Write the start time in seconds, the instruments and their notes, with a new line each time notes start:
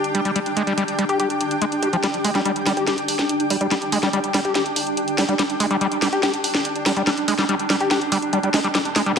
Already playing: synth texture D4, ambient pad D4 G4 G5 D6
0.04 closed hi-hat
0.15 acid bass G3, closed hi-hat
0.25 acid bass G3, closed hi-hat
0.36 acid bass G3, closed hi-hat
0.46 closed hi-hat
0.57 acid bass G#3, closed hi-hat
0.67 acid bass G3, closed hi-hat
0.78 acid bass G3, closed hi-hat
0.88 closed hi-hat
0.99 acid bass G3, closed hi-hat
1.09 acid bass G4, closed hi-hat
1.20 acid bass G4, closed hi-hat
1.30 closed hi-hat
1.41 closed hi-hat
1.51 closed hi-hat
1.62 acid bass G#3, closed hi-hat
1.72 closed hi-hat
1.83 acid bass G4, closed hi-hat
1.93 acid bass F3, closed hi-hat
2.03 acid bass G3, synth texture D4, snare, closed hi-hat
2.14 closed hi-hat
2.24 acid bass G#3, open hi-hat
2.35 acid bass G3, snare, closed hi-hat
2.45 acid bass G3, closed hi-hat
2.56 closed hi-hat
2.66 acid bass G3, snare, open hi-hat
2.77 acid bass G4, closed hi-hat
2.87 acid bass G4, snare, closed hi-hat
2.98 closed hi-hat
3.08 open hi-hat
3.19 snare, closed hi-hat
3.29 closed hi-hat
3.40 closed hi-hat
3.50 acid bass G3, open hi-hat
3.61 acid bass G3, closed hi-hat
3.71 acid bass G3, snare, closed hi-hat
3.82 closed hi-hat
3.92 acid bass G#3, open hi-hat
4.03 acid bass G3, snare, closed hi-hat
4.13 acid bass G3, closed hi-hat
4.24 closed hi-hat
4.34 acid bass G3, snare, open hi-hat
4.45 acid bass G4, closed hi-hat
4.55 acid bass G4, snare, closed hi-hat
4.66 closed hi-hat
4.76 open hi-hat
4.87 closed hi-hat
4.97 closed hi-hat
5.08 closed hi-hat
5.18 acid bass G3, snare, open hi-hat
5.29 acid bass G3, closed hi-hat
5.39 acid bass G3, snare, closed hi-hat
5.50 closed hi-hat
5.60 acid bass G#3, open hi-hat
5.71 acid bass G3, closed hi-hat
5.81 acid bass G3, closed hi-hat
5.92 closed hi-hat
6.02 acid bass G3, snare, open hi-hat
6.13 acid bass G4, closed hi-hat
6.23 acid bass G4, snare, closed hi-hat
6.34 closed hi-hat
6.44 open hi-hat
6.55 snare, closed hi-hat
6.65 closed hi-hat
6.76 closed hi-hat
6.86 acid bass G3, snare, open hi-hat
6.97 acid bass G3, closed hi-hat
7.07 acid bass G3, snare, closed hi-hat
7.18 closed hi-hat
7.28 acid bass G#3, open hi-hat
7.38 acid bass G3, snare, closed hi-hat
7.49 acid bass G3, closed hi-hat
7.59 closed hi-hat
7.70 acid bass G3, snare, open hi-hat
7.80 acid bass G4, closed hi-hat
7.91 acid bass G4, snare, closed hi-hat
8.01 closed hi-hat
8.12 acid bass G3, open hi-hat
8.22 closed hi-hat
8.33 acid bass G3, closed hi-hat
8.43 acid bass G3, closed hi-hat
8.54 acid bass G#3, snare, open hi-hat
8.64 acid bass G3, closed hi-hat
8.75 acid bass G3, snare, closed hi-hat, riser
8.85 closed hi-hat
8.96 acid bass G#3, snare, open hi-hat
9.06 acid bass G3, closed hi-hat